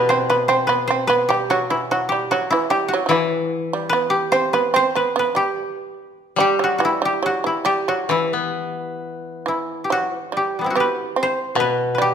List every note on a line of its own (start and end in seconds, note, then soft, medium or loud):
0.00 2.31 B2 medium
0.00 0.69 E3 medium
0.00 0.15 B3 medium
0.00 1.54 E4 medium
0.00 1.28 G4 medium
0.00 0.15 B4 loud
0.09 0.29 C4 medium
0.09 0.36 C5 medium
0.30 0.49 B3 medium
0.30 0.54 B4 medium
0.48 0.68 C4 medium
0.48 0.73 C5 medium
0.67 0.88 B3 medium
0.67 0.94 B4 medium
0.88 1.09 C4 medium
0.88 1.13 C5 medium
1.07 1.29 B3 medium
1.07 2.85 B4 medium
1.29 1.49 G3 medium
1.29 1.56 G4 medium
1.50 1.70 F#3 medium
1.50 1.91 F#4 medium
1.70 1.90 E3 medium
1.70 2.50 E4 medium
1.91 2.11 F#3 medium
1.91 2.15 F#4 medium
2.09 2.31 G3 medium
2.09 2.37 G4 medium
2.31 2.50 F#3 medium
2.31 2.76 F#4 medium
2.50 2.71 E3 medium
2.50 3.09 E4 medium
2.70 2.90 G3 medium
2.70 2.94 G4 medium
2.88 4.16 F#4 medium
2.94 3.05 F#3 medium
3.06 5.54 E3 medium
3.06 3.12 F#3 medium
3.06 5.35 E4 medium
3.11 3.68 E3 medium
3.73 3.92 G3 medium
3.89 4.31 B3 medium
3.89 4.38 B4 medium
4.10 5.36 G4 medium
4.32 4.52 C4 medium
4.32 4.59 C5 medium
4.53 4.72 B3 medium
4.53 4.82 B4 medium
4.74 4.93 C4 medium
4.74 5.02 C5 medium
4.95 5.14 B3 medium
4.95 5.19 B4 medium
5.16 5.34 B3 medium
5.16 6.97 B4 medium
5.35 5.93 G3 medium
5.35 6.40 G4 medium
6.36 8.99 G3 soft
6.36 6.59 G3 medium
6.40 6.70 G4 loud
6.59 6.80 F#3 medium
6.64 6.78 F#4 medium
6.78 7.00 E3 medium
6.78 7.11 F#4 medium
6.85 7.46 E4 medium
7.02 7.22 G3 medium
7.02 7.32 G4 medium
7.23 7.43 F#3 medium
7.23 7.71 F#4 medium
7.44 7.64 E3 medium
7.44 8.11 E4 medium
7.65 7.86 G3 medium
7.65 7.94 G4 medium
7.88 8.09 F#3 medium
7.88 9.90 F#4 medium
8.09 10.74 E3 medium
8.09 9.41 E3 medium
8.09 9.48 E4 medium
8.33 10.12 B3 soft
9.46 9.87 E3 medium
9.46 10.66 E4 medium
9.84 9.98 G4 soft
9.90 10.16 F#3 medium
9.90 10.43 F#4 medium
10.16 10.30 E3 medium
10.32 10.72 G3 medium
10.37 10.59 G4 medium
10.59 10.76 G3 soft
10.59 11.29 B3 soft
10.59 10.70 F#4 medium
10.64 10.86 C4 soft
10.64 12.14 E4 soft
10.70 12.08 F#4 medium
10.75 11.14 B3 medium
10.75 12.01 G4 medium
10.80 11.29 B4 medium
11.16 11.55 C4 medium
11.23 11.66 C5 loud
11.55 12.14 B2 medium
11.55 11.96 B3 medium
11.60 11.94 B4 medium
11.95 12.14 G3 medium
11.95 12.14 B4 medium
12.02 12.14 G4 medium